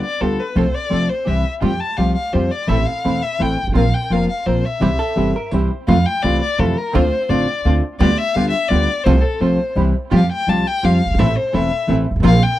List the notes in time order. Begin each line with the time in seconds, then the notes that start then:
0.04 D5
0.20 D2 D3 G3 B3 F4 G4 A4
0.40 B4
0.55 C2 C3 F3 A3 C4 F4 A4 C5
0.75 D5
0.90 C2 C3 F3 A3 C4 F4 A4
1.09 C5
1.26 C2 C3 E3 G3 C4 E4 G4 E5
1.61 F2 F3 G3 A3 C4 F4 G4 G5
1.81 A5
1.97 C2 F3 G3 A3 C4 F4 G4 F5
2.16 F5
2.33 F2 F3 G3 A3 C4 F4 G4 C5
2.51 D5
2.67 A1 E3 A3 C4 E4 A4 E5
2.86 F5
3.04 E1 E3 A3 C4 E4 A4
3.22 E5
3.39 A1 E3 A3 C4 E4 A4 G5
3.63 G1 G#1
3.72 A1 A#1 F3 A#3 C4 F4 A#4 F5
3.76 C4
3.94 G5
4.10 F1 F3 A#3 C4 F4 A#4 F5
4.30 F5
4.46 A#1 F3 A#3 C4 F4 A#4 C5
4.65 E5
4.80 C2 C3 E3 G3 C4 E4 G4
4.99 A4
5.16 G1 C3 E3 G3 C4 E4 G4
5.36 A#4
5.51 C2 C3 E3 G3 C4 E4 G4 C5
5.87 F2 C3 E3 A3 C4 E4 F4 F5
6.06 G5
6.22 C2 C3 E3 A3 C4 E4 F4 D5
6.42 D5
6.58 F2 C3 E3 A3 C4 E4 F4 A4
6.77 A#4
6.93 D2 D3 A3 C4 D4 F4 C5
7.29 A1 D3 A3 C4 D4 F4 D5
7.65 D2 D3 A3 C4 D4 F4
7.99 D2 D3 G3 B3 F4 G4 D5
8.18 E5
8.34 D2 D3 G3 B3 F4 G4 F5
8.50 E5
8.68 D2 D3 G3 B3 F4 G4 D5
9.04 C2 C3 F3 A3 C4 F4 A4 C5
9.21 A4
9.40 C2 C3 F3 A3 C4 F4 A4 C5
9.75 C2 C3 E3 G3 C4 E4 G4
10.11 F2 F3 G3 A3 C4 F4 G4
10.15 F5
10.32 G5
10.47 C2 F3 G3 A3 C4 F4 G4 A5
10.67 G5
10.83 F2 F3 G3 A3 C4 F4 G4 F5
11.06 F#1
11.10 G1 G#1
11.18 A1 E3 A3 C4 E4 A4 E5
11.37 C5
11.52 E1 E3 A3 C4 E4 A4 E5
11.87 A1 E3 A3 C4 E4 A4
12.11 G1
12.16 G#1
12.20 A1 F3 A#3 C4 F4 A#4
12.25 A#1 F5
12.43 G5